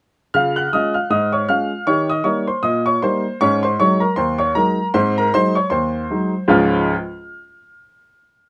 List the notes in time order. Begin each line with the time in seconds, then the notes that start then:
0.34 C#3 F4 F5 F6
0.56 F#5 F#6
0.73 G#3 C#4 F4 D#5 D#6
0.94 F5 F6
1.10 G#2 D#5 D#6
1.33 C#5 C#6
1.49 G#3 C#4 F4 F5 F6
1.87 D#3 G4 C#5 C#6
2.10 D#5 D#6
2.24 G3 A#3 D#4 C#5 C#6
2.48 C5 C6
2.63 A#2 D#5 D#6
2.86 C#5 C#6
3.02 G3 A#3 D#4 C5 C6
3.41 G#2 C#4 C#5 C#6
3.63 C5 C6
3.80 F#3 G#3 D#4 C#5 C#6
4.00 A#4 A#5
4.16 D#2 C5 C6
4.38 C#5 C#6
4.55 F#3 G#3 D#4 A#4 A#5
4.94 G#2 C4 C5 C6
5.18 A#4 A#5
5.34 F#3 G#3 D#4 C5 C6
5.55 C#5 C#6
5.70 D#2 C5 C6
6.10 F#3 G#3 D#4
6.48 C#2 G#2 F3 G#3 C#4 F4 F6